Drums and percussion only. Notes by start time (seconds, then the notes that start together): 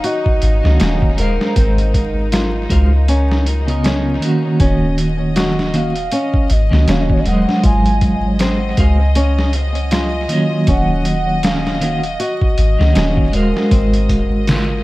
0.04 closed hi-hat
0.26 kick
0.42 closed hi-hat
0.65 snare
0.80 snare, closed hi-hat
1.02 kick
1.18 closed hi-hat
1.41 snare
1.56 kick, closed hi-hat
1.78 closed hi-hat
1.94 kick, closed hi-hat
2.32 snare, closed hi-hat
2.70 kick, closed hi-hat
3.08 closed hi-hat
3.31 snare
3.46 closed hi-hat
3.68 closed hi-hat
3.84 snare, closed hi-hat
4.22 closed hi-hat
4.60 kick, closed hi-hat
4.98 closed hi-hat
5.36 snare, closed hi-hat
5.59 snare
5.74 closed hi-hat
5.96 closed hi-hat
6.12 closed hi-hat
6.34 kick
6.50 closed hi-hat
6.73 snare
6.88 snare, closed hi-hat
7.10 kick
7.26 closed hi-hat
7.49 snare
7.64 kick, closed hi-hat
7.86 closed hi-hat
8.01 kick, closed hi-hat
8.39 snare, closed hi-hat
8.77 kick, closed hi-hat
9.15 closed hi-hat
9.39 snare
9.53 closed hi-hat
9.75 closed hi-hat
9.91 snare, closed hi-hat
10.29 closed hi-hat
10.67 kick, closed hi-hat
11.05 closed hi-hat
11.43 snare, closed hi-hat
11.67 snare
11.81 closed hi-hat
12.03 closed hi-hat
12.20 closed hi-hat
12.41 kick
12.58 closed hi-hat
12.81 snare
12.95 snare, closed hi-hat
13.17 kick
13.33 closed hi-hat
13.57 snare
13.71 kick, closed hi-hat
13.93 closed hi-hat
14.09 kick, closed hi-hat
14.47 snare, closed hi-hat